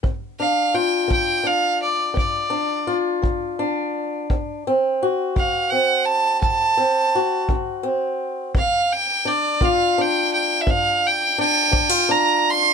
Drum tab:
BD |o--o--o--o--|o--o--o--o--|o--o--o--o--|